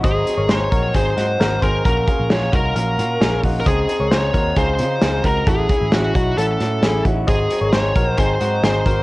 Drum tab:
HH |xxxxxxxx|xxxxxxxo|xxxxxxxx|xxxxxxxx|
SD |--o--oo-|--o---o-|--o---o-|--o--oo-|
BD |o--oo--o|oo-o---o|o--oo--o|oo-o---o|

HH |xxxxxxxx|
SD |--o---o-|
BD |o--oo--o|